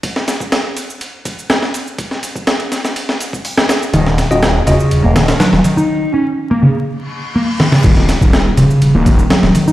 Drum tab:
CC |----------------|----------------|----------------|----------------|
RD |x-x-x-x-x-x-x-x-|x-x-xxx-x-x---x-|x-x-x-x-x-xxx-x-|----------------|
HH |----------------|------------o---|----------------|----------------|
SH |x-xxx-xxx-xxx-xx|x-xxx-xxx-xxx-xx|x-xxx-xxx-xxx-xx|----------------|
SD |-oo-o-------oo--|-o--o-oo-o---oo-|-oo-o-----oooo--|--------------oo|
BD |o--o------o-----|o--o-------o----|o--o------------|----------------|

CC |x---------------|
RD |x-x-x-x-x-x-x-x-|
HH |----------------|
SH |x-xxx-xxx-xxx-xx|
SD |-oo-o-------oo--|
BD |o--o------o-----|